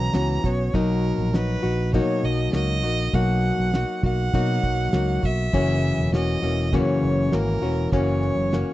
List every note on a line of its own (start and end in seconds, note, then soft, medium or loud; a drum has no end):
0.00 0.14 B2 medium
0.00 0.12 E3 medium
0.00 0.13 B3 medium
0.00 0.14 C#4 medium
0.00 0.15 F#4 medium
0.00 0.47 A#5 medium
0.13 0.38 C#2 medium
0.13 0.44 E3 medium
0.13 0.44 B3 medium
0.13 0.44 C#4 medium
0.13 0.43 F#4 medium
0.13 snare loud
0.13 shaker medium
0.44 0.69 B1 medium
0.44 0.74 B3 soft
0.44 0.74 C#4 soft
0.44 0.74 F#4 medium
0.44 0.76 C#5 medium
0.44 kick medium
0.44 shaker medium
0.73 1.11 B1 medium
0.73 1.34 B2 medium
0.73 1.33 F#3 medium
0.73 1.94 A#3 medium
0.73 1.34 D#4 medium
0.73 1.35 F#4 medium
0.73 1.37 A#4 medium
0.73 kick medium
0.73 shaker medium
1.04 shaker medium
1.18 1.55 A#1 medium
1.33 1.64 F#3 medium
1.33 1.63 D#4 medium
1.33 1.62 F#4 medium
1.33 1.94 B4 loud
1.33 snare loud
1.33 shaker medium
1.63 2.01 A#1 medium
1.63 1.93 D#4 soft
1.63 1.93 F#4 medium
1.63 shaker soft
1.79 shaker soft
1.93 2.53 B2 medium
1.93 2.52 F#3 medium
1.93 2.54 A#3 medium
1.93 2.53 D#4 medium
1.93 2.55 F#4 medium
1.93 2.26 C#5 medium
1.93 kick medium
1.93 shaker medium
2.24 2.48 B1 loud
2.24 2.53 D#5 medium
2.24 shaker medium
2.39 shaker soft
2.53 2.83 C#2 medium
2.53 2.83 F#3 medium
2.53 2.84 A#3 medium
2.53 2.83 D#4 medium
2.53 2.82 F#4 medium
2.53 3.16 D#5 loud
2.53 snare loud
2.53 shaker medium
2.83 3.08 A#1 medium
2.83 3.13 A#3 soft
2.83 3.13 D#4 soft
2.83 3.13 F#4 medium
2.83 shaker soft
3.13 3.50 B1 loud
3.13 3.73 B2 medium
3.13 3.73 F#3 medium
3.13 3.74 A#3 medium
3.13 3.74 D#4 medium
3.13 3.75 F#4 medium
3.13 4.04 F#5 loud
3.13 kick medium
3.13 shaker medium
3.44 shaker medium
3.59 3.83 B1 medium
3.73 4.03 F#3 medium
3.73 4.04 A#3 medium
3.73 4.04 D#4 medium
3.73 4.02 F#4 medium
3.73 snare loud
3.73 shaker medium
4.03 4.28 B1 loud
4.03 4.33 A#3 soft
4.03 4.33 D#4 soft
4.03 4.33 F#4 medium
4.03 5.26 F#5 loud
4.03 kick medium
4.03 shaker soft
4.19 shaker soft
4.33 4.93 B2 medium
4.33 4.58 B2 loud
4.33 4.93 F#3 medium
4.33 4.94 A#3 medium
4.33 4.94 D#4 medium
4.33 4.95 F#4 medium
4.33 kick medium
4.33 shaker medium
4.63 4.88 B1 medium
4.63 kick medium
4.63 shaker medium
4.93 5.18 C#2 medium
4.93 5.23 F#3 medium
4.93 5.24 A#3 medium
4.93 5.24 D#4 medium
4.93 5.22 F#4 medium
4.93 snare loud
4.93 shaker medium
5.23 5.48 B1 medium
5.23 5.53 A#3 soft
5.23 5.53 F#4 medium
5.23 6.14 E5 loud
5.23 kick medium
5.23 shaker medium
5.38 shaker medium
5.53 5.90 F#1 loud
5.53 6.13 F#2 medium
5.53 6.13 C#3 medium
5.53 6.12 E3 medium
5.53 6.13 A#3 medium
5.53 6.14 C#4 medium
5.53 6.15 F#4 medium
5.53 kick loud
5.53 shaker medium
5.69 snare soft
5.84 shaker medium
5.98 6.35 E1 medium
6.13 6.43 E3 medium
6.13 6.42 A#3 medium
6.13 6.42 C#4 medium
6.13 6.41 F#4 medium
6.13 6.76 D#5 medium
6.13 snare medium
6.13 shaker medium
6.42 6.79 E1 medium
6.42 6.72 E3 soft
6.42 6.72 A#3 soft
6.42 6.73 C#4 medium
6.42 6.73 F#4 medium
6.42 shaker soft
6.58 shaker soft
6.73 7.33 F#2 medium
6.73 7.33 C#3 medium
6.73 7.31 E3 medium
6.73 7.32 A#3 medium
6.73 7.33 C#4 medium
6.73 7.33 F#4 medium
6.73 7.36 C#5 medium
6.73 kick medium
6.73 shaker medium
7.03 7.27 F#1 loud
7.03 shaker medium
7.32 7.57 G#1 medium
7.32 7.62 E3 medium
7.32 7.63 A#3 medium
7.32 7.62 C#4 medium
7.32 7.61 F#4 medium
7.32 7.93 A#4 loud
7.32 snare loud
7.32 shaker medium
7.62 7.87 E1 medium
7.62 7.91 E3 soft
7.62 7.92 A#3 soft
7.62 7.92 C#4 soft
7.62 7.92 F#4 medium
7.62 shaker medium
7.92 8.29 F#1 medium
7.92 8.52 F#2 medium
7.92 8.52 C#3 medium
7.92 8.51 E3 medium
7.92 8.52 A#3 medium
7.92 8.53 C#4 loud
7.92 8.53 F#4 medium
7.92 8.73 C#5 medium
7.92 kick medium
7.92 shaker medium
8.07 snare soft
8.22 shaker medium
8.37 8.62 F#1 medium
8.52 8.73 E3 soft
8.52 8.73 A#3 medium
8.52 8.73 C#4 medium
8.52 8.73 F#4 medium
8.52 snare loud
8.52 shaker medium